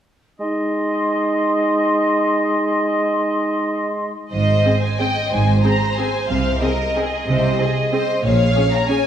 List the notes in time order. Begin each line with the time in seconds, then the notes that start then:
0.40 G#3 D#4 D#5 C6
4.32 G#1 G#2 C5 D#5
4.66 C4 G#4
4.82 G#5
4.99 C4 G#4 D#5 G5
5.30 G#1 G#2 C5 G#5
5.64 C4 G#4 A#5
5.97 C4 G#4 G#5
6.29 C2 C3 F5
6.62 C4 G#4 A#4 D#5
6.96 C4 G#4
7.27 C2 C3 C5
7.60 C4 G#4
7.93 C4 G#4 C5
8.24 A#1 A#2 C#5 F5
8.56 C#4 G#4
8.73 A#5
8.89 C#4 G#4 G#5